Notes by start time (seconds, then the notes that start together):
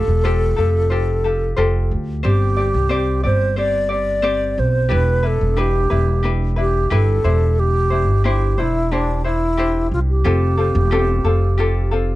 Already playing: F4 G4 A4
0.08 E1
0.24 F4 G4 A4 C5
0.56 F1 F4 G4 A4
0.90 F4 G4 A4 C5
1.24 F4 G4 A4
1.57 F1 F4 G4 A4 C5
1.91 D2
2.23 G1 C4 G4 C5 D5
2.57 C4 G4 D5
2.74 C2
2.89 C4 G4 C5 D5
3.23 G1 C4 G4 C5 D5
3.56 C4 G4 C5 D5
3.89 C4 G4 D5
4.22 C4 G4 C5 D5
4.58 B1 C5
4.89 E1 D4 E4 G4 B4
4.93 B4
5.23 D4 E4 B4
5.27 A4
5.41 E1
5.57 D4 E4 G4 B4
5.90 E1 D4 E4 B4
6.23 D4 E4 G4 B4
6.56 D4 E4 B4
6.60 G4
6.90 G1 D4 E4 G4 A4 B4
7.24 E1 D4 E4 G4 C5
7.60 G4
7.90 D4 E4 C5
8.08 G1
8.24 D4 E4 G4 C5
8.58 E1 D4 E4 C5
8.92 D4 E4 G4 C5
9.24 D4 E4 C5
9.57 D4 E4 G4 C5
9.91 C2 F4
10.09 G4
10.24 F1 C4 F4 G4 A4
10.57 C4 F4 A4
10.75 E1
10.91 C4 F4 G4 A4
11.24 F1 C4 F4 A4
11.58 C4 F4 G4 A4
11.91 C4 F4 A4